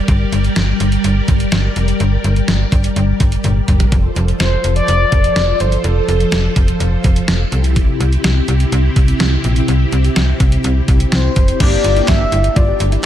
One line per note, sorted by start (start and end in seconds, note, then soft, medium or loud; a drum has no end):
0.00 3.88 G3 medium
0.00 3.88 G4 medium
0.00 3.88 A#4 medium
0.00 3.88 D5 medium
0.08 0.25 G1 loud
0.08 kick loud
0.08 closed hi-hat medium
0.32 0.49 G1 loud
0.32 closed hi-hat medium
0.44 closed hi-hat soft
0.56 0.73 G1 loud
0.56 snare loud
0.56 closed hi-hat medium
0.80 0.97 G1 loud
0.80 closed hi-hat medium
0.92 closed hi-hat medium
1.04 1.21 G1 loud
1.04 closed hi-hat medium
1.28 1.45 G1 loud
1.28 kick medium
1.28 closed hi-hat medium
1.40 closed hi-hat medium
1.52 1.69 G1 loud
1.52 snare loud
1.52 closed hi-hat medium
1.76 1.93 F1 medium
1.76 closed hi-hat medium
1.88 closed hi-hat medium
2.00 2.17 G1 loud
2.00 closed hi-hat medium
2.24 2.41 G1 loud
2.24 closed hi-hat medium
2.36 closed hi-hat soft
2.48 2.65 G1 loud
2.48 snare loud
2.48 closed hi-hat medium
2.72 2.89 G1 loud
2.72 kick medium
2.72 closed hi-hat medium
2.84 closed hi-hat medium
2.96 3.13 G1 loud
2.96 closed hi-hat medium
3.20 3.37 G1 loud
3.20 kick medium
3.20 closed hi-hat medium
3.32 closed hi-hat medium
3.44 3.61 G1 loud
3.44 closed hi-hat medium
3.44 high tom medium
3.68 3.85 G1 medium
3.68 closed hi-hat medium
3.68 mid tom medium
3.80 closed hi-hat medium
3.80 floor tom medium
3.92 4.09 F1 loud
3.92 7.48 F3 medium
3.92 7.49 F4 medium
3.92 7.48 A4 medium
3.92 7.49 C5 medium
3.92 kick loud
3.92 closed hi-hat medium
4.16 4.33 F1 loud
4.16 closed hi-hat medium
4.28 closed hi-hat soft
4.40 4.57 F1 loud
4.40 4.74 C5 loud
4.40 snare loud
4.40 closed hi-hat medium
4.64 4.81 F1 loud
4.64 closed hi-hat medium
4.76 5.62 D5 loud
4.76 closed hi-hat medium
4.88 5.05 F1 loud
4.88 closed hi-hat medium
5.12 5.29 F1 loud
5.12 kick medium
5.12 closed hi-hat medium
5.24 closed hi-hat medium
5.36 5.53 F1 loud
5.36 snare loud
5.36 closed hi-hat medium
5.60 5.77 G1 medium
5.60 5.86 C5 medium
5.60 closed hi-hat medium
5.72 closed hi-hat medium
5.84 6.01 F1 loud
5.84 6.80 A4 medium
5.84 closed hi-hat medium
6.08 6.25 F1 loud
6.08 closed hi-hat medium
6.20 closed hi-hat soft
6.32 6.49 F1 loud
6.32 snare loud
6.32 closed hi-hat medium
6.56 6.73 F1 loud
6.56 kick medium
6.56 closed hi-hat medium
6.68 closed hi-hat medium
6.80 6.97 F1 loud
6.80 closed hi-hat medium
7.04 7.21 F1 loud
7.04 kick medium
7.04 closed hi-hat medium
7.16 closed hi-hat medium
7.28 7.45 F1 loud
7.28 snare loud
7.28 closed hi-hat medium
7.52 7.86 C2 loud
7.52 11.56 C3 medium
7.52 11.56 C4 medium
7.52 11.56 E4 medium
7.52 11.56 G4 medium
7.52 closed hi-hat medium
7.64 closed hi-hat medium
7.76 kick loud
7.76 closed hi-hat medium
8.00 8.17 C2 loud
8.00 closed hi-hat medium
8.13 closed hi-hat soft
8.24 8.41 C2 loud
8.24 snare loud
8.24 closed hi-hat medium
8.48 8.65 C2 loud
8.48 closed hi-hat medium
8.60 closed hi-hat medium
8.72 8.89 C2 loud
8.72 closed hi-hat medium
8.96 9.13 C2 loud
8.96 kick medium
8.96 closed hi-hat medium
9.08 closed hi-hat medium
9.20 9.37 C2 loud
9.20 snare loud
9.20 closed hi-hat medium
9.44 9.61 A#1 loud
9.44 closed hi-hat medium
9.56 closed hi-hat medium
9.68 9.85 C2 loud
9.68 closed hi-hat medium
9.92 10.09 C2 loud
9.92 closed hi-hat medium
10.04 closed hi-hat soft
10.16 10.33 C2 loud
10.16 snare loud
10.16 closed hi-hat medium
10.40 10.57 C2 loud
10.40 kick medium
10.40 closed hi-hat medium
10.52 closed hi-hat medium
10.64 10.81 C2 loud
10.64 closed hi-hat medium
10.88 11.05 C2 loud
10.88 kick medium
10.88 closed hi-hat medium
11.00 closed hi-hat medium
11.12 11.29 C2 loud
11.12 11.62 C5 medium
11.12 snare loud
11.12 closed hi-hat medium
11.36 11.53 F1 medium
11.36 kick medium
11.36 closed hi-hat medium
11.48 closed hi-hat medium
11.60 11.77 G1 loud
11.60 12.23 A#3 medium
11.60 13.06 A#3 medium
11.60 11.72 D4 medium
11.60 13.06 D4 medium
11.60 12.23 D4 medium
11.60 13.06 G4 medium
11.60 12.23 G4 medium
11.60 12.08 D5 loud
11.60 kick loud
11.60 closed hi-hat medium
11.60 crash loud
11.84 12.01 G1 loud
11.84 11.90 F4 medium
11.84 closed hi-hat medium
11.96 12.09 E4 medium
11.96 closed hi-hat soft
12.08 12.25 G1 loud
12.08 12.58 E5 loud
12.08 kick loud
12.08 snare loud
12.08 clap medium
12.08 closed hi-hat medium
12.20 12.26 D4 medium
12.32 12.49 G1 loud
12.32 12.45 E4 medium
12.32 closed hi-hat medium
12.44 closed hi-hat medium
12.56 12.73 G1 loud
12.56 12.62 F4 medium
12.56 13.04 D5 medium
12.56 kick loud
12.56 closed hi-hat medium
12.68 12.80 G4 medium
12.80 12.97 G1 loud
12.80 closed hi-hat medium
12.92 12.98 E4 medium
12.92 closed hi-hat medium